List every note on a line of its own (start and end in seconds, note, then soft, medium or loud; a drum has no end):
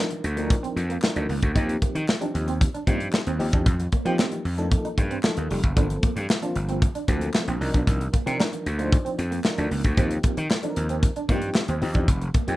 0.00 0.22 F3 medium
0.00 0.22 D4 medium
0.00 0.22 D#4 medium
0.00 0.22 A#4 loud
0.10 muted clean electric guitar stroke soft
0.10 closed hi-hat medium
0.24 0.54 D2 medium
0.24 closed hi-hat medium
0.36 0.84 F3 medium
0.36 0.45 A#3 medium
0.36 0.84 D4 medium
0.36 0.85 D#4 medium
0.36 0.85 A#4 loud
0.36 closed hi-hat medium
0.50 kick loud
0.50 closed hi-hat medium
0.63 0.71 C4 medium
0.63 closed hi-hat soft
0.76 0.96 F2 medium
0.76 muted clean electric guitar stroke soft
0.76 closed hi-hat medium
0.89 0.97 A#3 medium
0.89 closed hi-hat medium
1.02 1.41 F3 medium
1.02 1.41 D4 medium
1.02 1.41 D#4 medium
1.02 1.41 A#4 medium
1.02 muted clean electric guitar stroke soft
1.02 snare loud
1.02 clap medium
1.16 1.26 D2 medium
1.16 1.24 D4 medium
1.16 closed hi-hat medium
1.29 1.39 C#2 loud
1.29 1.37 A#3 medium
1.29 open hi-hat medium
1.42 1.52 D2 medium
1.42 kick medium
1.42 closed hi-hat soft
1.54 1.75 D#2 loud
1.54 2.02 F3 medium
1.54 2.03 C4 medium
1.54 2.03 D#4 medium
1.54 1.64 D#4 medium
1.54 2.03 G4 loud
1.54 kick medium
1.54 closed hi-hat medium
1.69 closed hi-hat soft
1.82 1.90 A#3 medium
1.82 kick medium
1.82 closed hi-hat medium
1.95 2.05 D#3 medium
1.95 muted clean electric guitar stroke soft
1.95 closed hi-hat medium
2.08 snare loud
2.08 clap medium
2.20 2.68 F3 medium
2.20 2.68 C4 medium
2.20 2.29 D4 medium
2.20 2.69 D#4 medium
2.20 2.69 G4 medium
2.20 closed hi-hat medium
2.34 2.64 D#2 medium
2.34 muted clean electric guitar stroke soft
2.34 closed hi-hat medium
2.48 2.55 C4 loud
2.48 closed hi-hat medium
2.61 muted clean electric guitar stroke soft
2.61 kick loud
2.61 closed hi-hat medium
2.74 2.82 D4 medium
2.74 closed hi-hat soft
2.86 3.07 G2 medium
2.86 3.25 F3 medium
2.86 2.95 A#3 medium
2.86 3.25 C4 medium
2.86 3.25 D#4 medium
2.86 3.25 G4 medium
2.86 kick loud
2.86 closed hi-hat medium
3.00 closed hi-hat medium
3.12 snare loud
3.12 clap medium
3.27 3.37 D#2 medium
3.27 3.35 C4 medium
3.27 closed hi-hat medium
3.39 3.50 D#2 medium
3.39 3.66 F3 loud
3.39 3.66 C4 medium
3.39 3.66 D#4 loud
3.39 3.66 G4 loud
3.39 muted clean electric guitar stroke soft
3.39 open hi-hat medium
3.53 3.63 E2 medium
3.53 3.61 D4 medium
3.53 kick loud
3.53 closed hi-hat soft
3.66 3.86 F2 loud
3.66 kick loud
3.66 closed hi-hat medium
3.80 muted clean electric guitar stroke soft
3.80 closed hi-hat soft
3.92 4.01 A#3 medium
3.92 kick medium
3.92 closed hi-hat medium
4.05 4.43 F3 medium
4.05 4.15 F3 loud
4.05 4.43 A#3 medium
4.05 4.14 C4 medium
4.05 4.43 D#4 medium
4.05 4.44 G4 loud
4.05 closed hi-hat medium
4.19 4.27 C4 medium
4.19 snare loud
4.19 clap medium
4.32 muted clean electric guitar stroke soft
4.32 closed hi-hat medium
4.45 4.75 F2 medium
4.45 open hi-hat medium
4.58 5.05 F3 medium
4.58 4.64 A3 medium
4.58 4.66 D4 medium
4.58 5.06 D#4 medium
4.58 5.06 A4 loud
4.58 closed hi-hat medium
4.64 5.09 A#3 medium
4.72 kick loud
4.72 closed hi-hat medium
4.85 4.93 D#4 medium
4.85 closed hi-hat soft
4.98 5.17 G2 medium
4.98 muted clean electric guitar stroke soft
4.98 kick medium
4.98 closed hi-hat medium
5.11 5.19 C4 medium
5.11 closed hi-hat soft
5.23 5.62 F3 medium
5.23 5.62 A#3 medium
5.23 5.62 D#4 medium
5.23 5.62 A4 medium
5.23 muted clean electric guitar stroke soft
5.23 snare loud
5.23 clap medium
5.37 5.47 D#2 medium
5.37 5.45 A#3 medium
5.37 closed hi-hat medium
5.50 5.60 F1 medium
5.50 5.58 G3 medium
5.50 open hi-hat medium
5.63 5.74 F#1 medium
5.63 kick medium
5.63 closed hi-hat medium
5.76 5.97 G1 loud
5.76 6.24 F3 medium
5.76 6.24 A#3 medium
5.76 6.24 C4 medium
5.76 5.85 D4 medium
5.76 6.24 A4 medium
5.76 kick loud
5.76 closed hi-hat medium
5.90 closed hi-hat medium
6.03 6.11 A#3 medium
6.03 kick medium
6.03 closed hi-hat medium
6.16 6.26 G2 medium
6.16 muted clean electric guitar stroke soft
6.16 closed hi-hat medium
6.30 snare loud
6.30 clap medium
6.42 6.90 F3 medium
6.42 6.90 A#3 medium
6.42 6.90 C4 medium
6.42 6.50 D4 medium
6.42 6.90 F4 loud
6.42 closed hi-hat medium
6.56 6.85 G1 medium
6.56 muted clean electric guitar stroke soft
6.56 closed hi-hat medium
6.69 6.77 C4 medium
6.69 closed hi-hat medium
6.82 muted clean electric guitar stroke soft
6.82 kick loud
6.82 closed hi-hat medium
6.95 7.03 D4 medium
6.95 closed hi-hat soft
7.08 7.28 D2 medium
7.08 7.46 F3 medium
7.08 7.46 A#3 medium
7.08 7.16 A#3 medium
7.08 7.46 C4 medium
7.08 7.46 A4 medium
7.08 kick medium
7.08 closed hi-hat medium
7.21 closed hi-hat soft
7.34 snare loud
7.34 clap medium
7.48 7.58 A#1 medium
7.48 7.56 C4 medium
7.48 closed hi-hat medium
7.60 7.71 C2 loud
7.60 8.13 F3 medium
7.60 8.13 D4 medium
7.60 8.14 D#4 medium
7.60 8.14 A#4 loud
7.60 muted clean electric guitar stroke soft
7.60 open hi-hat medium
7.74 7.84 B1 medium
7.74 7.82 D4 medium
7.74 kick medium
7.74 closed hi-hat medium
7.87 8.07 C2 loud
7.87 kick loud
7.87 closed hi-hat medium
8.00 muted clean electric guitar stroke soft
8.00 closed hi-hat soft
8.13 8.21 A#3 medium
8.13 kick loud
8.13 closed hi-hat medium
8.26 8.37 C3 loud
8.26 8.64 F3 medium
8.26 8.34 C4 medium
8.26 8.64 D4 medium
8.26 8.65 D#4 medium
8.26 8.65 A#4 loud
8.26 closed hi-hat medium
8.39 8.47 D4 medium
8.39 snare loud
8.39 clap medium
8.52 muted clean electric guitar stroke medium
8.52 closed hi-hat medium
8.66 8.96 D2 medium
8.66 closed hi-hat medium
8.79 9.27 F3 loud
8.79 8.87 A#3 medium
8.79 9.27 D4 medium
8.79 9.27 D#4 medium
8.79 9.27 C5 loud
8.79 closed hi-hat medium
8.92 kick loud
8.92 closed hi-hat medium
9.05 9.13 C4 medium
9.05 closed hi-hat soft
9.18 9.38 F2 medium
9.18 muted clean electric guitar stroke soft
9.18 closed hi-hat medium
9.31 9.39 A#3 medium
9.31 closed hi-hat soft
9.44 9.83 F3 medium
9.44 9.83 D4 medium
9.44 9.83 D#4 medium
9.44 9.83 A#4 medium
9.44 muted clean electric guitar stroke soft
9.44 snare loud
9.44 clap medium
9.58 9.68 D2 medium
9.58 9.66 D4 medium
9.58 closed hi-hat medium
9.71 9.81 C#2 medium
9.71 9.79 A#3 medium
9.71 open hi-hat medium
9.84 9.95 D2 medium
9.84 kick medium
9.84 closed hi-hat medium
9.97 10.17 D#2 loud
9.97 10.45 F3 medium
9.97 10.45 C4 medium
9.97 10.05 C4 medium
9.97 10.45 D#4 medium
9.97 10.45 G4 loud
9.97 kick medium
9.97 closed hi-hat medium
10.11 closed hi-hat medium
10.23 10.32 A#3 medium
10.23 kick loud
10.23 closed hi-hat medium
10.37 10.47 D#3 loud
10.37 muted clean electric guitar stroke soft
10.37 closed hi-hat medium
10.51 snare loud
10.51 clap medium
10.63 11.10 F3 medium
10.63 11.11 C4 medium
10.63 10.71 D4 medium
10.63 11.11 D#4 medium
10.63 10.70 A4 medium
10.63 closed hi-hat medium
10.70 11.14 A#4 loud
10.76 11.06 D#2 medium
10.76 muted clean electric guitar stroke soft
10.76 closed hi-hat medium
10.89 10.98 C4 medium
10.89 closed hi-hat medium
11.03 muted clean electric guitar stroke soft
11.03 kick loud
11.03 closed hi-hat medium
11.16 11.24 D4 medium
11.16 closed hi-hat soft
11.28 11.49 G2 loud
11.28 11.67 F3 medium
11.28 11.37 A#3 medium
11.28 11.67 C4 medium
11.28 11.67 D#4 medium
11.28 11.36 F4 medium
11.28 kick medium
11.28 closed hi-hat medium
11.36 11.70 G4 loud
11.42 closed hi-hat soft
11.54 snare loud
11.54 clap medium
11.68 11.78 D#2 medium
11.68 11.77 C4 medium
11.68 closed hi-hat medium
11.82 11.92 D#2 medium
11.82 12.08 F3 loud
11.82 12.08 C4 medium
11.82 12.08 D#4 medium
11.82 12.08 G4 loud
11.82 muted clean electric guitar stroke soft
11.82 open hi-hat medium
11.94 12.10 E2 medium
11.94 12.03 D4 medium
11.94 kick medium
11.94 closed hi-hat medium
12.08 12.28 F1 loud
12.08 kick medium
12.08 closed hi-hat medium
12.21 muted clean electric guitar stroke soft
12.21 closed hi-hat medium
12.34 12.42 A#3 medium
12.34 kick loud
12.34 closed hi-hat medium
12.47 12.56 F2 medium
12.47 12.56 F3 medium
12.47 12.56 A#3 medium
12.47 12.56 C4 medium
12.47 12.56 D#4 medium
12.47 12.56 G4 loud
12.47 closed hi-hat medium